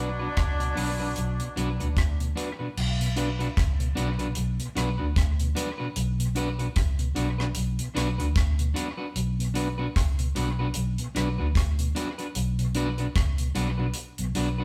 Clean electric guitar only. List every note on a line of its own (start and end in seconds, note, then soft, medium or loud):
0.19 0.27 D4 soft
0.19 0.27 F#4 soft
0.19 0.26 B4 medium
0.75 0.88 D4 medium
0.75 0.89 F#4 medium
0.75 0.89 B4 loud
0.99 1.07 D4 soft
0.99 1.07 F#4 medium
0.99 1.06 B4 medium
1.56 1.68 D4 medium
1.56 1.69 F#4 medium
1.56 1.69 B4 medium
1.80 1.87 D4 soft
1.80 1.87 F#4 soft
1.80 1.86 B4 medium
2.36 2.48 D4 medium
2.36 2.49 F#4 medium
2.36 2.49 B4 medium
2.59 2.67 D4 soft
2.59 2.67 F#4 soft
2.59 2.66 B4 medium
3.16 3.28 D4 medium
3.16 3.29 F#4 medium
3.16 3.29 B4 medium
3.39 3.47 D4 medium
3.39 3.47 F#4 medium
3.39 3.46 B4 medium
3.95 4.08 D4 medium
3.95 4.09 F#4 loud
3.95 4.09 B4 loud
4.19 4.27 D4 medium
4.19 4.26 F#4 medium
4.19 4.26 B4 medium
4.75 4.88 D4 medium
4.75 4.88 F#4 medium
4.75 4.89 B4 medium
4.98 5.06 D4 soft
4.98 5.06 F#4 soft
4.98 5.06 B4 medium
5.55 5.68 D4 medium
5.55 5.68 F#4 medium
5.55 5.69 B4 loud
5.78 5.87 D4 soft
5.78 5.86 F#4 medium
5.78 5.86 B4 medium
6.35 6.48 D4 medium
6.35 6.48 F#4 medium
6.35 6.49 B4 loud
6.59 6.67 D4 medium
6.59 6.66 F#4 medium
6.59 6.66 B4 medium
7.15 7.28 D4 medium
7.15 7.28 F#4 medium
7.15 7.29 B4 medium
7.38 7.47 D4 medium
7.38 7.46 F#4 medium
7.38 7.46 B4 medium
7.95 8.07 D4 medium
7.95 8.08 F#4 loud
7.95 8.08 B4 loud
8.18 8.26 D4 soft
8.18 8.26 F#4 soft
8.18 8.26 B4 medium
8.74 8.87 D4 medium
8.74 8.87 F#4 medium
8.74 8.88 B4 medium
8.97 9.06 D4 soft
8.97 9.05 F#4 medium
8.97 9.05 B4 medium
9.54 9.67 D4 medium
9.54 9.68 F#4 medium
9.54 9.68 B4 medium
9.78 9.86 D4 medium
9.78 9.86 F#4 medium
9.78 9.85 B4 medium
10.35 10.48 D4 medium
10.35 10.48 F#4 medium
10.35 10.48 B4 medium
10.59 10.67 D4 medium
10.59 10.66 F#4 medium
10.59 10.66 B4 medium
11.15 11.27 D4 medium
11.15 11.28 F#4 medium
11.15 11.28 B4 medium
11.38 11.46 D4 soft
11.38 11.46 F#4 medium
11.38 11.46 B4 medium
11.95 12.07 D4 medium
11.95 12.08 F#4 medium
11.95 12.08 B4 loud
12.18 12.26 D4 soft
12.18 12.26 F#4 medium
12.18 12.25 B4 medium
12.75 12.87 D4 medium
12.75 12.88 F#4 loud
12.75 12.88 B4 loud
12.98 13.06 D4 medium
12.98 13.06 F#4 medium
12.98 13.05 B4 medium
13.55 13.67 D4 medium
13.55 13.68 F#4 medium
13.55 13.68 B4 medium
13.78 13.86 D4 medium
13.78 13.86 F#4 medium
13.78 13.85 B4 medium
14.35 14.47 D4 medium
14.35 14.48 F#4 medium
14.35 14.48 B4 medium
14.58 14.64 D4 medium
14.58 14.64 F#4 soft
14.58 14.64 B4 medium